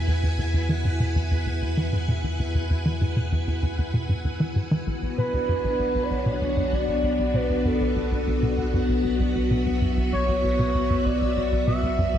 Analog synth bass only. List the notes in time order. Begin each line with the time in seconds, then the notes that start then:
0.08 E2
0.23 E2
0.38 E2
0.54 E2
0.69 E3
0.85 G#2
1.00 B2
1.16 E2
1.31 E2
1.46 E2
1.62 E2
1.77 E3
1.93 G#2
2.08 B2
2.24 E2
2.39 E2
2.55 E2
2.70 E2
2.86 E3
3.01 G#2
3.17 B2
3.32 E2
3.47 E2
3.63 E2
3.78 E2
3.94 B2
4.09 G#2
4.25 E2
4.40 E3
4.56 G#2
4.71 E3
4.87 B1
5.03 B1
5.18 B2
5.34 D2
5.49 F#2
5.64 B1
5.79 B1
5.95 B1
6.11 B1
6.26 B2
6.41 D2
6.57 F#2
6.73 B1
6.88 B1
7.03 B1
7.19 B1
7.34 B2
7.50 D2
7.65 F#2
7.80 B1
7.96 B1
8.12 B1
8.27 B1
8.43 B2
8.58 D2
8.74 F#2
8.89 B1
9.04 B1
9.20 B1
9.35 B1
9.51 B2
9.66 D2
9.82 F#2
9.97 B1
10.13 B1
10.28 B1
10.44 B1
10.59 B2
10.75 D2
10.90 F#2
11.06 B1
11.21 B1
11.37 B1
11.52 B1
11.67 B2
11.83 D2
11.98 F#2
12.14 B1